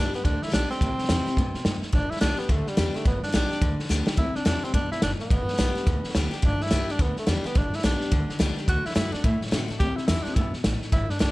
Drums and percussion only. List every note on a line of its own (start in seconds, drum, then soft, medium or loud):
0.14 snare soft
0.24 kick loud
0.24 snare soft
0.42 snare soft
0.48 snare soft
0.54 snare loud
0.54 hi-hat pedal medium
0.71 snare soft
0.81 kick loud
0.81 snare soft
0.98 snare soft
1.04 snare soft
1.09 snare loud
1.09 hi-hat pedal loud
1.26 snare soft
1.37 kick loud
1.37 snare soft
1.54 snare soft
1.65 snare loud
1.65 hi-hat pedal medium
1.82 snare soft
1.93 kick loud
1.93 snare soft
2.11 snare soft
2.16 snare soft
2.21 snare loud
2.21 hi-hat pedal medium
2.38 snare soft
2.49 kick loud
2.49 snare soft
2.67 snare soft
2.77 snare loud
2.77 hi-hat pedal medium
2.95 snare soft
3.05 kick loud
3.05 snare soft
3.23 snare soft
3.28 snare soft
3.34 snare loud
3.34 hi-hat pedal medium
3.51 snare soft
3.62 kick loud
3.62 snare soft
3.79 snare soft
3.84 snare soft
3.90 snare medium
3.90 hi-hat pedal medium
4.07 snare loud
4.17 kick loud
4.17 snare soft
4.35 snare soft
4.46 snare loud
4.46 hi-hat pedal medium
4.63 snare soft
4.74 kick loud
4.74 snare soft
4.91 snare soft
5.02 snare loud
5.02 hi-hat pedal medium
5.19 snare soft
5.30 kick loud
5.30 snare soft
5.48 snare soft
5.53 snare soft
5.59 snare loud
5.59 hi-hat pedal medium
5.76 snare soft
5.87 kick loud
5.87 snare soft
6.04 snare soft
6.09 snare soft
6.15 snare loud
6.15 hi-hat pedal medium
6.32 snare soft
6.43 kick loud
6.43 snare soft
6.61 snare soft
6.66 snare soft
6.71 snare loud
6.71 hi-hat pedal medium
6.88 snare soft
6.99 kick loud
6.99 snare soft
7.16 snare soft
7.27 snare loud
7.27 hi-hat pedal medium
7.45 snare soft
7.55 kick loud
7.55 snare soft
7.73 snare soft
7.79 snare soft
7.84 snare loud
7.84 hi-hat pedal medium
8.01 snare soft
8.12 kick loud
8.12 snare soft
8.29 snare soft
8.40 snare loud
8.40 hi-hat pedal medium
8.57 snare soft
8.68 kick loud
8.68 snare soft
8.85 snare soft
8.91 snare soft
8.96 snare loud
8.96 hi-hat pedal medium
9.13 snare soft
9.24 kick loud
9.24 snare soft
9.42 snare soft
9.46 snare soft
9.52 snare loud
9.52 hi-hat pedal medium
9.69 snare soft
9.80 kick loud
9.80 snare soft
9.97 snare soft
10.08 snare loud
10.08 hi-hat pedal medium
10.25 snare soft
10.36 kick loud
10.36 snare soft
10.53 snare soft
10.64 snare loud
10.64 hi-hat pedal medium
10.82 snare soft
10.92 kick loud
10.92 snare soft
11.10 snare soft
11.20 snare loud
11.20 hi-hat pedal medium